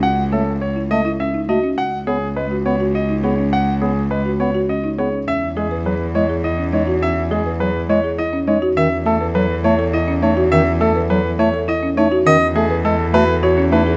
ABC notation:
X:1
M:3/4
L:1/16
Q:1/4=103
K:G#phr
V:1 name="Grand piano"
f z A z c z d z e z d z | f z G z B z c z d z c z | f z G z B z c z d z c z | [K:E] e z G z B z c z d z c z |
e z G z B z c z d z c z | e z A z B z c z d z c z | e z A z B z c z d z c z | d z G z A z B z c z B z |]
V:2 name="Marimba"
z2 c z2 E A E C D F C | z2 c z2 F B F C D G C | z2 c z2 F B F C D G C | [K:E] C z G B G z E G E C D F |
C z G B G z E G E C D F | C z A B A z E A E C D F | C z A B A z E A E C D F | C z A B A z F A F C D G |]
V:3 name="Bass clarinet"
z2 A, z3 A, z3 A, z | z2 B, z G, z B, z3 B, z | z2 B, z G, z B, z3 B, z | [K:E] z2 G, z F, z G, z3 G, z |
z2 G, z F, z G, z3 G, z | D, z A, z F, z A, z3 A, z | D, z A, z F, z A, z3 A, z | D, z A, z G, z A, z3 A, z |]
V:4 name="Cello" clef=bass
C,,12 | C,,12- | C,,12 | [K:E] E,,12- |
E,,12 | E,,12- | E,,12 | E,,12 |]